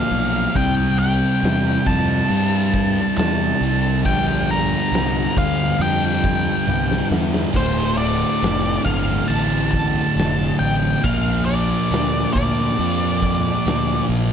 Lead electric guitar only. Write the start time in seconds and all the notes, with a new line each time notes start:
Already playing: F5
0.56 G5
0.99 G5
1.87 A5
3.18 A5
4.06 G5
4.51 A#5
5.38 F5
5.82 G5
7.57 C5
7.97 D5
8.85 F5
9.28 A5
9.71 A5
10.59 G5
11.04 F5
11.45 D5
12.33 D5